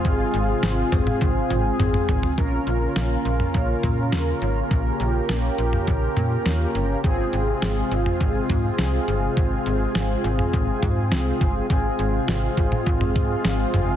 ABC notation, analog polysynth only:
X:1
M:4/4
L:1/8
Q:1/4=103
K:Bbdor
V:1 name="Analog polysynth"
[CFA]8 | [DFB]8- | [DFB]8 | [CFA]8- |
[CFA]8 | [CFA]8 |]